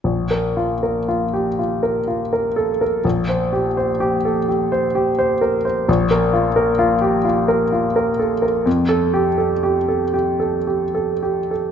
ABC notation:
X:1
M:3/4
L:1/16
Q:1/4=62
K:Fmix
V:1 name="Grand piano"
B,,, B F B F G F B F B A B | B,,, c G c G A G c G c B c | B,,, B F B F G F B F B A B | F,, A G A G A G A G A G A |]